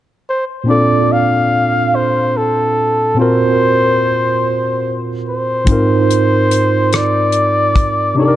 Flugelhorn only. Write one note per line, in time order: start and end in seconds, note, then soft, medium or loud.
0.29 0.45 C5 medium
0.70 1.14 D5 medium
1.12 1.97 F5 medium
1.95 2.39 C5 medium
2.37 3.19 A4 medium
3.20 4.96 C5 medium
5.29 6.98 C5 medium
6.96 8.18 D5 medium
8.19 8.36 D5 medium